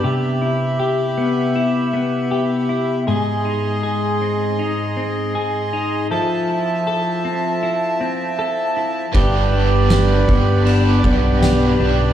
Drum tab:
RD |--------|--------|--------|x-x-x-x-|
TB |--------|--------|--------|--x---x-|
SD |--------|--------|--------|--o---o-|
BD |--------|--------|--------|o--o-o--|